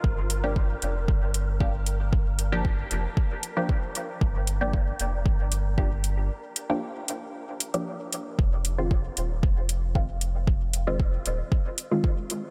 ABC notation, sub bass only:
X:1
M:4/4
L:1/8
Q:1/4=115
K:Fdor
V:1 name="Sub bass" clef=bass
G,,,3 F,,, G,,,4- | G,,,3 F,,, z4 | G,,,3 F,,, G,,,4 | z8 |
F,,,3 E,,, F,,,4- | F,,,3 E,,, z4 |]